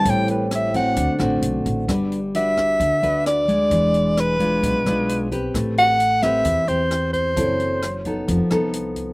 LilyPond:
<<
  \new Staff \with { instrumentName = "Soprano saxophone" } { \time 4/4 \key g \major \tempo 4 = 131 g''8 b'8 e''8 fis''4 r4. | r4 e''2 d''4~ | d''4 b'2~ b'8 r8 | r8 fis''4 e''4 c''4 c''8~ |
c''4. r2 r8 | }
  \new Staff \with { instrumentName = "Vibraphone" } { \time 4/4 \key g \major <e' a' c'' g''>2 <d' a' c'' fis''>2 | r1 | r1 | r1 |
r1 | }
  \new Staff \with { instrumentName = "Nylon-string guitar" } { \time 4/4 \key g \major << { <g c' e'>4. <a c' fis'>4 <a c' fis'>4. | <d' fis' b'>8 r8 <d' fis' b'>4. <d' fis' b'>4 <aes d'>8~ | <aes d'>4. <gis d' f'>4 <gis d' f'>4 <c' g' b'>8~ | <c' g' b'>4 r8 <c' g' b'>4 <c' g'>4. |
<c' e' a'>4 r8 <b ees' a'>4 <b ees' a'>4. | } \\ { a,2 d2 | g2 d2 | e2 b,2 | a2 e2 |
fis2 f2 | } >> }
  \new Staff \with { instrumentName = "Upright bass" } { \clef bass \time 4/4 \key g \major a,,2 d,16 r16 a,,8 b,,8 a,,8 | g,,2 d,16 r16 d,4. | e,,2 b,,16 r16 b,,4. | a,,2 e,16 r16 e,4. |
fis,,2 f,,16 r16 c,4. | }
  \new DrumStaff \with { instrumentName = "Drums" } \drummode { \time 4/4 <hh bd>8 hh8 <hh ss>8 <hh bd>8 <hh bd>8 <hh ss>8 hh8 <hh bd>8 | <hh bd ss>8 hh8 hh8 <hh bd ss>8 <hh bd>8 hh8 <hh ss>8 <hh bd>8 | <hh bd>8 hh8 <hh ss>8 <hh bd>8 <hh bd>8 <hh ss>8 hh8 <hh bd>8 | <hh bd ss>8 hh8 hh8 <hh bd ss>8 <hh bd>8 hh8 <hh ss>8 <hh bd>8 |
<hh bd>8 hh8 <hh ss>8 <hh bd>8 <hh bd>8 <hh ss>8 hh8 <hh bd>8 | }
>>